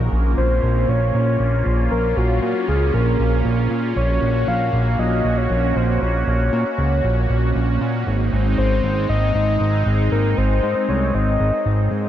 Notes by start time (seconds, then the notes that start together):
Already playing: A#3 C#4 F4
0.12 A#1
0.37 A#1 C5
0.63 A#1
0.89 A#1 C#5
1.14 A#1 C#5
1.40 A#1
1.66 A#1
1.91 A#1 A#4
2.17 A#1 F#4
2.42 A#2 F#4
2.68 C#2 G#4
2.94 A#1 A#4
3.20 A#1
3.45 A#1
3.71 A#2
3.96 A#1 A#3 F#4 C#5
4.22 A#1
4.48 A#1 F5
4.73 A#1
4.99 A#1 D#5
5.25 A#1
5.37 C#5
5.50 A#1
5.76 A#1 C5
6.01 A#1 C#5
6.27 A#1
6.53 A#2
6.78 C#2
7.04 A#1
7.30 A#1
7.55 A#1
7.81 A#2
8.07 G#1 G#3 C4 D#4
8.32 G#1
8.58 G#1 C5
8.84 G#1
9.09 G#1 D#5
9.35 G#1 D#5
9.61 G#1
9.86 G#1
10.12 G#1 A#4
10.38 G#1 C5
10.63 G#2 C5
10.89 C2 C#5
11.14 G#1 D#5
11.40 G#1
11.66 G#1
11.91 G#2